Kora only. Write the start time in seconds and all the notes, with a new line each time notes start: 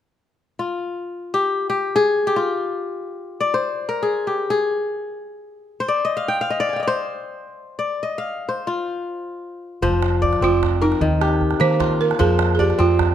0.59 F4
1.34 G4
1.70 G4
1.96 G#4
2.27 G4
2.36 F4
3.40 D5
3.54 C5
3.89 A#4
4.03 G#4
4.27 G4
4.50 G#4
5.80 C5
5.88 D5
6.05 D#5
6.17 F5
6.28 G5
6.41 F5
6.50 D#5
6.60 D5
6.69 G5 G#5
6.76 D#5 F5
6.83 D5
6.87 C5
7.79 D5
8.03 D#5
8.18 F5
8.49 C5
8.67 F4
9.82 F3 C5
10.22 D5
10.42 C4
10.81 A#4
11.01 D#3
11.21 G4
11.60 A#3
11.80 F4
12.19 F3 C5
12.59 D5
12.79 C4